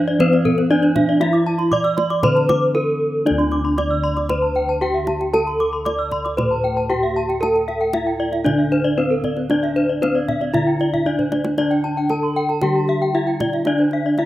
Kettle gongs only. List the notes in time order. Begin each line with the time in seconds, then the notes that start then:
0.19 E3
0.70 E4
1.20 E4
1.71 E4
2.23 D3
2.75 E4
3.25 D4
3.31 D2
3.77 E4
4.81 E4
5.34 A4
5.86 E4
6.38 A2
6.91 E4
7.42 A4
7.94 E4
8.46 D3
8.98 E4
9.50 D4
10.01 E4
10.54 D3
11.05 E4
11.58 D4
12.09 E4
12.62 D3
13.14 E4
13.66 D4
14.18 E4